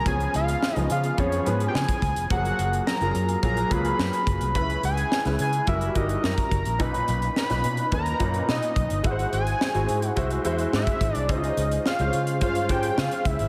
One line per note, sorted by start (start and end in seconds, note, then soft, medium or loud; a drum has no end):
0.05 0.26 C#2 medium
0.05 0.58 F3 medium
0.05 0.58 B3 medium
0.05 0.58 C#4 medium
0.05 0.59 G#4 medium
0.05 0.35 G#5 medium
0.05 kick medium
0.05 closed hi-hat medium
0.20 closed hi-hat soft
0.34 0.54 C#2 medium
0.34 0.76 F5 loud
0.34 closed hi-hat medium
0.48 closed hi-hat soft
0.63 snare medium
0.75 0.86 C#2 medium
0.75 1.07 F3 medium
0.75 1.07 B3 medium
0.75 1.07 C#4 medium
0.75 1.08 G#4 medium
0.75 0.87 D#5 loud
0.75 closed hi-hat soft
0.90 1.10 C#3 medium
0.90 1.21 F5 medium
0.90 closed hi-hat medium
1.04 closed hi-hat soft
1.17 1.38 F2 medium
1.17 1.39 F3 medium
1.17 1.39 B3 medium
1.17 1.39 C#4 medium
1.17 1.39 G#4 medium
1.17 1.49 C#5 medium
1.17 kick medium
1.17 closed hi-hat medium
1.32 closed hi-hat soft
1.45 1.66 G#2 medium
1.45 2.09 F3 medium
1.45 2.09 B3 medium
1.45 2.09 C#4 medium
1.45 2.09 G#4 medium
1.45 1.68 B4 medium
1.45 closed hi-hat medium
1.60 closed hi-hat soft
1.68 1.76 G5 medium
1.75 1.84 C#3 loud
1.75 2.31 G#5 loud
1.75 snare loud
1.89 kick medium
1.89 closed hi-hat soft
2.02 2.12 C#2 medium
2.02 kick medium
2.02 closed hi-hat medium
2.16 2.27 F1 medium
2.16 closed hi-hat medium
2.30 2.50 F#1 medium
2.30 2.83 F3 medium
2.30 2.83 F#3 medium
2.30 2.83 A#3 medium
2.30 2.83 G#4 medium
2.30 2.83 F#5 loud
2.30 kick medium
2.30 closed hi-hat medium
2.45 closed hi-hat soft
2.59 2.79 F#1 medium
2.59 closed hi-hat medium
2.73 closed hi-hat soft
2.87 3.39 A#5 loud
2.87 snare medium
3.01 3.11 F#1 medium
3.01 3.32 F#3 medium
3.01 3.32 A#3 medium
3.01 3.32 F4 medium
3.01 3.33 G#4 medium
3.01 closed hi-hat soft
3.15 3.35 F#2 medium
3.15 closed hi-hat medium
3.29 closed hi-hat soft
3.43 3.63 A#1 loud
3.43 3.64 F#3 medium
3.43 3.64 A#3 medium
3.43 3.64 F4 medium
3.43 3.64 G#4 medium
3.43 3.74 A#5 loud
3.43 kick medium
3.43 closed hi-hat medium
3.57 closed hi-hat soft
3.71 3.91 C#2 medium
3.71 4.34 F#3 medium
3.71 4.34 A#3 medium
3.71 4.34 F4 medium
3.71 4.34 G#4 medium
3.71 4.55 B5 loud
3.71 kick medium
3.71 closed hi-hat medium
3.85 closed hi-hat soft
3.99 4.09 F#2 medium
3.99 snare loud
4.13 closed hi-hat medium
4.27 4.37 F#1 medium
4.27 kick medium
4.27 closed hi-hat medium
4.41 4.55 C2 medium
4.41 closed hi-hat medium
4.54 4.75 C#2 medium
4.54 5.07 G#3 medium
4.54 5.07 C#4 medium
4.54 5.08 E4 medium
4.54 5.08 B4 medium
4.54 4.82 B5 loud
4.54 kick medium
4.54 closed hi-hat medium
4.70 closed hi-hat soft
4.83 5.03 C#2 medium
4.83 5.36 G#5 loud
4.83 closed hi-hat medium
4.97 closed hi-hat soft
5.12 snare medium
5.24 5.35 C#2 medium
5.24 5.56 G#3 medium
5.24 5.57 C#4 medium
5.24 5.57 E4 medium
5.24 5.57 B4 medium
5.24 snare soft
5.24 closed hi-hat soft
5.39 5.59 C#3 medium
5.39 5.67 G#5 medium
5.39 closed hi-hat medium
5.53 closed hi-hat soft
5.67 5.87 F#1 loud
5.67 5.88 G3 medium
5.67 5.88 E4 medium
5.67 5.88 F#4 medium
5.67 5.89 A#4 medium
5.67 5.99 E5 loud
5.67 kick medium
5.67 closed hi-hat medium
5.81 closed hi-hat soft
5.95 6.15 G1 medium
5.95 6.58 G3 medium
5.95 6.58 E4 medium
5.95 6.59 F#4 medium
5.95 6.59 A#4 medium
5.95 6.27 D#5 medium
5.95 kick medium
5.95 closed hi-hat medium
6.09 closed hi-hat soft
6.24 6.34 F#2 medium
6.24 6.83 A#5 loud
6.24 snare medium
6.38 kick medium
6.38 closed hi-hat soft
6.51 6.61 F#1 medium
6.51 kick medium
6.51 closed hi-hat medium
6.65 6.80 A#1 medium
6.65 closed hi-hat medium
6.79 7.00 B1 medium
6.79 7.32 A#2 medium
6.79 7.32 C#4 medium
6.79 7.32 D#4 medium
6.79 7.32 B4 medium
6.79 7.37 B5 loud
6.79 kick medium
6.79 closed hi-hat medium
6.94 closed hi-hat soft
7.08 7.28 B1 medium
7.08 closed hi-hat medium
7.22 closed hi-hat soft
7.36 7.89 B5 loud
7.36 snare medium
7.49 7.60 B1 medium
7.49 7.81 A#2 medium
7.49 7.81 C#4 medium
7.49 7.82 D#4 medium
7.49 7.82 B4 medium
7.49 snare soft
7.49 closed hi-hat soft
7.64 7.84 B2 medium
7.64 closed hi-hat medium
7.77 closed hi-hat soft
7.91 8.12 D#2 medium
7.91 8.13 A#3 medium
7.91 8.13 C#4 medium
7.91 8.13 D#4 medium
7.91 8.13 B4 medium
7.91 8.46 A#5 loud
7.91 kick medium
7.91 closed hi-hat medium
8.06 closed hi-hat soft
8.19 8.40 F#2 medium
8.19 8.83 A#2 medium
8.19 8.83 C#4 medium
8.19 8.83 D#4 medium
8.19 8.83 B4 medium
8.19 kick medium
8.19 closed hi-hat medium
8.34 closed hi-hat soft
8.48 8.58 B2 medium
8.48 9.08 D#5 medium
8.48 snare loud
8.63 closed hi-hat soft
8.76 8.86 B1 medium
8.76 kick medium
8.76 closed hi-hat medium
8.90 9.00 G1 medium
8.90 closed hi-hat medium
9.03 9.24 G#1 medium
9.03 9.56 G#3 medium
9.03 9.57 E4 medium
9.03 9.57 F#4 medium
9.03 9.11 B4 medium
9.03 9.33 F#5 loud
9.03 kick medium
9.03 closed hi-hat medium
9.11 9.60 C5 medium
9.19 closed hi-hat soft
9.33 9.53 G#1 medium
9.33 10.09 G#5 loud
9.33 closed hi-hat medium
9.47 closed hi-hat soft
9.61 snare medium
9.74 9.85 G#1 medium
9.74 10.06 G#3 medium
9.74 10.06 E4 medium
9.74 10.06 F#4 medium
9.74 10.06 C5 medium
9.74 closed hi-hat soft
9.89 10.09 G#2 medium
9.89 closed hi-hat medium
10.02 closed hi-hat soft
10.09 10.41 F#5 loud
10.16 10.37 C2 medium
10.16 10.37 G#3 medium
10.16 10.37 E4 medium
10.16 10.38 F#4 medium
10.16 10.38 C5 loud
10.16 kick medium
10.16 closed hi-hat medium
10.30 closed hi-hat soft
10.44 10.65 E2 medium
10.44 11.08 G#3 medium
10.44 11.08 E4 medium
10.44 11.08 F#4 medium
10.44 11.08 C5 loud
10.44 closed hi-hat medium
10.58 closed hi-hat soft
10.73 10.83 G#2 loud
10.73 11.15 E5 medium
10.73 snare loud
10.87 kick medium
10.87 closed hi-hat medium
11.01 11.11 G#1 medium
11.01 kick medium
11.01 closed hi-hat medium
11.15 11.29 C2 medium
11.15 11.32 D5 medium
11.15 closed hi-hat medium
11.29 11.49 C#2 loud
11.29 11.81 G#3 medium
11.29 11.82 C#4 medium
11.29 11.36 E4 medium
11.29 11.82 C5 medium
11.29 11.86 D#5 loud
11.29 kick loud
11.29 closed hi-hat medium
11.36 11.85 F4 medium
11.44 closed hi-hat soft
11.57 11.77 C#2 loud
11.57 closed hi-hat medium
11.71 closed hi-hat soft
11.86 12.39 F5 medium
11.86 snare medium
11.99 12.09 C#2 medium
11.99 12.31 G#3 medium
11.99 12.31 C#4 medium
11.99 12.31 F4 medium
11.99 12.32 C5 medium
11.99 closed hi-hat soft
12.13 12.42 C#3 medium
12.13 closed hi-hat medium
12.27 closed hi-hat soft
12.41 12.69 G2 medium
12.41 12.62 G#3 medium
12.41 12.62 C#4 medium
12.41 12.63 F4 medium
12.41 12.63 C5 medium
12.41 12.72 F5 loud
12.41 kick medium
12.41 closed hi-hat medium
12.55 closed hi-hat soft
12.69 12.89 G#2 medium
12.69 13.32 G#3 medium
12.69 13.33 C#4 medium
12.69 13.33 F4 medium
12.69 13.33 C5 medium
12.69 13.00 G5 loud
12.69 kick medium
12.69 closed hi-hat medium
12.83 closed hi-hat soft
12.98 13.08 C#3 medium
12.98 13.28 F5 loud
12.98 snare loud
13.11 closed hi-hat soft
13.25 13.35 C#2 medium
13.25 13.48 E5 loud
13.25 kick medium
13.25 closed hi-hat medium
13.39 13.48 G#1 medium
13.39 closed hi-hat medium